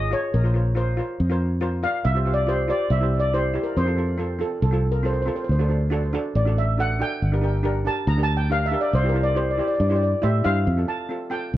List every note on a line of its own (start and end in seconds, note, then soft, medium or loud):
0.00 0.13 G#1 loud
0.00 0.13 D#5 loud
0.11 0.31 F4 medium
0.11 0.31 G#4 medium
0.11 0.32 C#5 medium
0.34 0.99 A#1 medium
0.34 0.78 A#4 medium
0.44 0.50 F4 medium
0.44 0.51 A#4 medium
0.44 0.51 C5 medium
0.54 0.68 F4 medium
0.54 0.68 A#4 medium
0.54 0.69 C5 medium
0.75 0.89 F4 medium
0.75 0.90 A#4 medium
0.75 1.37 C5 medium
0.75 0.90 C5 medium
0.97 1.17 F4 medium
0.97 1.17 A#4 medium
0.97 1.18 C5 medium
1.20 1.85 F2 loud
1.29 1.49 F4 medium
1.29 1.50 A#4 medium
1.29 1.50 C5 medium
1.61 1.75 F4 medium
1.61 1.75 A#4 medium
1.61 1.76 C5 medium
1.83 2.03 F4 medium
1.83 2.03 A#4 medium
1.83 2.04 D5 medium
1.83 1.93 F5 medium
2.05 2.71 C2 medium
2.05 2.32 E5 loud
2.15 2.22 F4 medium
2.15 2.23 G4 medium
2.15 2.23 C5 medium
2.26 2.40 F4 medium
2.26 2.40 G4 medium
2.26 2.41 C5 medium
2.34 2.49 D5 medium
2.47 2.61 F4 medium
2.47 2.62 G4 medium
2.47 2.71 C5 medium
2.47 2.62 C5 medium
2.68 2.89 F4 medium
2.68 2.89 G4 medium
2.68 2.89 C5 medium
2.68 2.90 D5 medium
2.90 3.57 C2 loud
2.90 3.21 E5 medium
3.01 3.21 E4 medium
3.01 3.22 G4 medium
3.01 3.22 C5 medium
3.20 3.33 D5 medium
3.33 3.47 E4 medium
3.33 3.48 G4 medium
3.33 3.61 C5 medium
3.33 3.48 C5 medium
3.54 3.74 E4 medium
3.54 3.75 G4 medium
3.54 3.75 C5 medium
3.63 3.78 A#4 medium
3.77 4.43 F2 medium
3.77 4.44 C5 loud
3.86 3.94 C4 medium
3.86 3.94 F4 medium
3.86 3.95 A4 medium
3.97 4.11 C4 medium
3.97 4.12 F4 medium
3.97 4.12 A4 medium
4.18 4.32 C4 medium
4.18 4.33 F4 medium
4.18 4.33 A4 medium
4.39 4.60 C4 medium
4.39 4.60 F4 medium
4.39 4.61 A4 medium
4.62 5.29 C2 loud
4.62 4.90 A4 medium
4.71 4.92 C4 medium
4.71 4.93 F4 medium
4.71 4.94 A4 medium
4.92 5.07 A#4 medium
5.03 5.18 C4 medium
5.03 5.19 F4 medium
5.03 5.19 A4 medium
5.03 5.12 C5 medium
5.13 5.21 C5 medium
5.22 5.47 C4 medium
5.22 5.27 C5 medium
5.27 5.47 F4 medium
5.27 5.48 A4 medium
5.27 5.35 C5 medium
5.36 5.43 C5 medium
5.44 5.51 C5 medium
5.49 6.15 D2 medium
5.49 5.59 C5 medium
5.59 5.66 D4 medium
5.59 5.66 F#4 medium
5.59 5.67 A4 medium
5.59 5.67 C5 medium
5.69 5.83 D4 medium
5.69 5.84 F#4 medium
5.69 5.84 A4 medium
5.90 6.05 D4 medium
5.90 6.05 F#4 medium
5.90 6.06 A4 loud
6.13 6.33 D4 medium
6.13 6.33 F#4 medium
6.13 6.34 A4 loud
6.35 7.01 A1 loud
6.35 6.56 D5 medium
6.45 6.65 D4 medium
6.45 6.66 F#4 medium
6.45 6.66 A4 medium
6.58 6.80 E5 medium
6.77 6.91 D4 medium
6.77 6.92 F#4 medium
6.77 6.92 A4 medium
6.77 7.02 F#5 loud
6.99 7.19 D4 medium
6.99 7.20 F#4 medium
6.99 7.20 A4 medium
6.99 7.41 G5 loud
7.22 7.88 G1 medium
7.32 7.39 D4 medium
7.32 7.39 G4 medium
7.32 7.40 A#4 medium
7.41 7.56 D4 medium
7.41 7.57 G4 medium
7.41 7.57 A#4 medium
7.63 7.78 D4 medium
7.63 7.78 G4 medium
7.63 7.79 A#4 loud
7.85 8.06 D4 medium
7.85 8.06 G4 medium
7.85 8.07 A#4 medium
7.85 8.09 A5 loud
8.07 8.74 D2 loud
8.07 8.22 A#5 medium
8.17 8.38 D4 medium
8.17 8.38 G4 medium
8.17 8.39 A#4 medium
8.23 8.38 A5 loud
8.37 8.52 G5 loud
8.50 8.64 D4 medium
8.50 8.64 G4 medium
8.50 8.65 A#4 medium
8.50 8.66 F5 loud
8.66 8.81 E5 loud
8.71 8.92 D4 medium
8.71 8.92 G4 medium
8.71 8.93 A#4 medium
8.81 8.95 D5 medium
8.93 9.60 C2 medium
8.93 9.08 C5 loud
9.03 9.11 E4 medium
9.03 9.11 G4 medium
9.03 9.12 C5 medium
9.09 9.24 A#4 medium
9.14 9.29 E4 medium
9.14 9.29 G4 medium
9.14 9.30 C5 medium
9.23 9.38 D5 medium
9.35 9.50 E4 medium
9.35 9.50 G4 medium
9.35 9.51 C5 medium
9.51 9.58 D5 medium
9.58 9.78 E4 medium
9.58 9.79 G4 medium
9.58 9.79 C5 medium
9.58 9.67 D5 medium
9.68 9.73 D5 medium
9.75 9.79 D5 medium
9.80 10.14 G2 loud
9.80 9.88 D5 medium
9.89 10.11 E4 medium
9.89 10.11 G4 medium
9.89 10.12 C5 medium
9.89 9.95 D5 medium
9.96 10.02 D5 medium
10.03 10.11 D5 medium
10.22 10.43 A2 medium
10.22 10.37 E4 medium
10.22 10.37 G4 medium
10.22 10.37 C5 loud
10.22 10.46 E5 medium
10.44 10.65 G2 medium
10.44 10.65 E4 medium
10.44 10.65 G4 medium
10.44 10.66 C5 loud
10.44 10.90 F5 loud
10.67 10.84 F2 loud
10.77 10.84 C4 medium
10.77 10.84 F4 medium
10.77 10.85 A4 medium
10.87 11.02 C4 medium
10.87 11.02 F4 medium
10.87 11.03 A4 medium
10.87 11.33 A5 loud
11.09 11.23 C4 medium
11.09 11.24 F4 medium
11.09 11.24 A4 medium
11.30 11.57 C4 medium
11.30 11.57 F4 medium
11.30 11.57 A4 medium
11.30 11.57 G5 medium
11.54 11.57 C2 medium